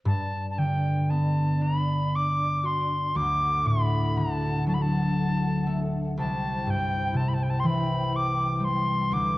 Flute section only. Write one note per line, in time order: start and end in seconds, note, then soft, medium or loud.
0.06 3.12 D4 soft
0.06 3.13 D5 soft
3.16 6.14 D4 medium
3.16 6.14 A4 medium
3.16 6.14 F#5 medium
6.18 8.84 E4 medium
6.18 8.86 C5 medium
6.18 9.09 G5 medium
9.10 9.38 D4 medium
9.10 9.38 B4 medium
9.10 9.38 F#5 medium